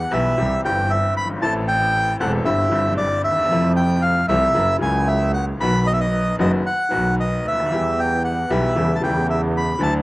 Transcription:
Already playing: F#5
0.11 B1 B2 E3 G3 B3 G4 E5
0.37 C2 C3 E3 G3 C4 G4
0.63 G1 G2 E3 G3 C4 G4 G5
0.90 E5
1.17 G1 B5
1.25 F#1
1.29 G1
1.36 G#1
1.40 A1 A2 E3 A3 C4 A5
1.45 A4
1.68 G5
2.20 E1 E2 E3 A3 C4 A4 F#5
2.45 G1 G2 D3 G3 C4 E4 E5
2.69 G1 G2 D3 G3 C4
2.74 E4
2.97 D5
3.24 D#2 E5
3.31 D2
3.38 D#2
3.44 E2
3.50 F2 C3 F3 A3 E4
3.76 G5
4.02 F5
4.28 C2 C3 F3 A3 E4 E5
4.54 F#1 F#2 C#3 F#3 A#3 E4
4.81 C#2 C#3 F#3 A#3 E4 G#5
5.08 E5
5.34 F#5
5.59 B1 B2 D#3 F#3 B3 F#4 B5
5.87 D#5
5.93 E5
6.00 D#5
6.38 F#1 F#2 D#3 F#3 B3 F#4 D#5
6.66 F#5
6.89 B1 B2 D#3 F#3 B3
6.93 F#4
7.20 D#5
7.44 D2 E5
7.51 C#2
7.60 D2
7.66 D#2
7.71 E2 E3 G3 B3 G4
8.00 G5
8.24 F#5
8.50 B1 B2 E3 G3 B3 G4 E5
8.76 E2 C#3 E3 G3 A3 E4
8.96 A5
9.01 E2 C#3 E3 G3 A3 G5
9.06 E4
9.30 E5
9.57 B5
9.79 D2 D3 F#3 A3
9.83 E4 A5

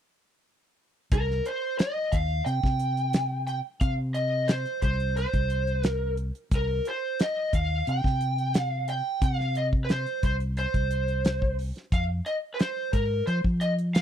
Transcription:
1.12 C2 A#4, kick, closed hi-hat
1.30 snare
1.45 C5, closed hi-hat
1.79 D#5, snare, closed hi-hat
2.12 D#2 F5, kick, closed hi-hat
2.46 C3 G5, closed hi-hat
2.63 C3, kick, snare
2.79 closed hi-hat
2.97 closed hi-hat
3.13 snare, closed hi-hat
3.47 G5, closed hi-hat
3.81 C3 F5, kick, closed hi-hat
4.14 D#5, closed hi-hat
4.48 C5, snare, closed hi-hat
4.66 closed hi-hat
4.82 C2 C5, kick, closed hi-hat
5.00 closed hi-hat
5.17 C5, closed hi-hat
5.33 C2, kick, closed hi-hat
5.50 closed hi-hat
5.67 closed hi-hat
5.83 A#4, snare, closed hi-hat
6.17 closed hi-hat
6.35 closed hi-hat
6.51 C2, kick, closed hi-hat
6.55 A#4
6.85 C5, closed hi-hat
7.19 D#5, snare, closed hi-hat
7.53 D#2 F5, kick, closed hi-hat
7.87 C3 G5, closed hi-hat
8.04 C3, kick, snare
8.21 closed hi-hat
8.38 closed hi-hat
8.54 snare, closed hi-hat
8.61 F5
8.88 G5, closed hi-hat
9.22 C3 F5, kick, closed hi-hat
9.40 snare
9.55 D#5, closed hi-hat
9.73 kick
9.85 B4
9.89 C5, snare, closed hi-hat
10.06 closed hi-hat
10.23 C2 C5, kick, closed hi-hat
10.40 closed hi-hat
10.57 C5, closed hi-hat
10.74 C2, kick, closed hi-hat
10.91 closed hi-hat
11.08 closed hi-hat
11.25 snare, closed hi-hat
11.42 kick
11.59 open hi-hat
11.76 snare, closed hi-hat
11.92 F2 F5, kick, closed hi-hat
12.26 D#5, closed hi-hat
12.54 B4
12.59 C5, snare, closed hi-hat
12.93 G#2 A#4, kick, closed hi-hat
13.27 F3 C5, closed hi-hat
13.44 F3, kick
13.61 D#5, closed hi-hat
13.78 closed hi-hat
13.95 F5, snare, closed hi-hat

